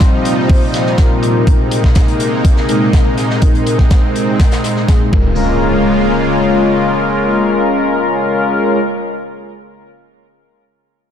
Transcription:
Already playing: A#2 C3 F3 G3 C4 D#4 F4 C5
0.00 kick, snare, closed hi-hat
0.25 closed hi-hat, open hi-hat
0.50 kick, open hi-hat
0.74 snare, closed hi-hat, open hi-hat
0.87 snare
0.98 A#2 G3 C4 F4 A#4, kick, snare, closed hi-hat
1.23 closed hi-hat, open hi-hat
1.47 A#2 G#3 A#3 C4 D#4 A#4, kick, closed hi-hat
1.71 closed hi-hat, open hi-hat
1.84 kick, snare
1.95 kick, snare, closed hi-hat
2.08 closed hi-hat
2.20 closed hi-hat, open hi-hat
2.45 kick, closed hi-hat
2.57 snare
2.69 A#2 G#3 C4 D#4 A#4, closed hi-hat, open hi-hat
2.93 kick, snare, closed hi-hat
3.18 snare, closed hi-hat, open hi-hat
3.30 snare
3.42 A#2 G#3 C4 D#4 A#4, kick, closed hi-hat
3.55 closed hi-hat
3.67 closed hi-hat, open hi-hat
3.79 kick, snare
3.91 kick, snare, closed hi-hat
4.15 closed hi-hat, open hi-hat
4.40 kick, snare, closed hi-hat
4.52 snare, closed hi-hat
4.64 snare, closed hi-hat, open hi-hat
4.76 snare
4.88 A#2 G#3 C4 D#4 G#4, kick, snare, closed hi-hat
5.13 C#3 G#3 A#3 C#4 F4 A#4, kick, crash, impact

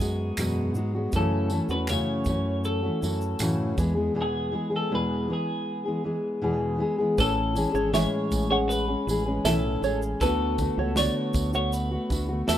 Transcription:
Already playing: G#4
0.00 F#2 F#3 G#3 B3 F#4, kick, tambourine, shaker
0.37 E2 F#2 B2 F#3 G#3 B3 F#4, finger snap, tambourine, shaker
0.75 G#2 F#3 G#3 B3 F#4, shaker
0.95 F#3 G#3 B3 F#4
1.12 F#2 C#3 E3 A3 C#4 F#4 A4, kick, tambourine, shaker
1.50 E3 A3 C#4, tambourine, shaker
1.55 F#4
1.69 E2 A3 C#4 F#4 B4, shaker
1.73 E3
1.87 F#2 C#3 E3 A3 C#4 F#4 C#5, finger snap, tambourine, shaker
2.25 F#2 E3 A3, kick, tambourine, shaker
2.29 C#4 F#4
2.64 A4, shaker
2.82 E3 A3 C#4 F#4
3.01 F#2 E3 A3 C#4 F#4, tambourine, shaker
3.21 shaker
3.39 F#2 A2 C#3 E3 A3 C#4 F#4, finger snap, tambourine, shaker
3.77 E2 E3 G#3 B3 G#4, kick, tambourine, shaker
3.95 E3 G#3 B3 G#4
4.14 E2 B2 E3 G#3 B3 G#4
4.22 G#4
4.52 E3 G#3 B3 G#4
4.70 E3 G#3 B3 G#4
4.76 A4
4.91 E2 B2 E3 G#3 B3 G#4
4.95 B4
5.28 E3 G#3 B3 G#4
5.33 G#4
5.86 E3 G#3 B3 G#4
6.04 E3 G#3 B3 G#4
6.42 E2 B2 E3 G#3 B3 G#4
6.78 E3 G#3 B3 G#4
6.98 E3 G#3 B3 G#4
7.18 A1 A2 E3 C#4 A4 B4, kick, tambourine, shaker
7.55 E3 G#3 C#4 G#4, tambourine, shaker
7.72 G#1 C#4 G#4 C#5, shaker
7.76 G#3
7.92 A2 E3 G#3 C#4 G#4 C#5 E5, snare, tambourine, shaker
8.31 A1, kick, tambourine, shaker
8.50 G#3 C#4 G#4 C#5 F#5
8.69 B4, tambourine, shaker
8.88 G#3 C#4 G#4
9.07 A1 E3 G#3 C#4 G#4, tambourine, shaker
9.26 G#3 C#4 G#4
9.44 B1 A2 E3 C#4 A4 E5, snare, tambourine, shaker
9.82 A1 E3 G#3 C#4 G#4 C#5, tambourine, shaker
10.02 shaker
10.21 D2 D3 A3 B3 F#4 A4 B4, kick, tambourine, shaker
10.58 D3 A3 B3 F#4, kick, tambourine, shaker
10.78 C#2 A3 B3 F#4 C#5
10.96 D3 A3 B3 F#4 C#5 D5, snare, tambourine, shaker
11.33 D2, kick, tambourine, shaker
11.53 A3 B3 F#4 C#5 F#5, shaker
11.73 B4, tambourine, shaker
11.91 A3 B3 F#4
12.10 D2 D3 A3 B3 F#4, kick, tambourine, shaker
12.29 A3 B3 F#4
12.47 E2 D3 A3 B3 F#4 A4 E5, snare, tambourine, shaker

